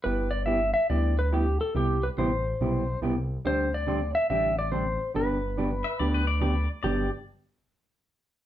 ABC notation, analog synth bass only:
X:1
M:4/4
L:1/8
Q:"Swing" 1/4=142
K:G
V:1 name="Analog synth bass" clef=bass
G,,,4 D,,4 | C,,2 A,,,2 B,,,2 C,,2 | D,,4 A,,,4 | G,,,4 D,,4 |
G,,, z6 z |]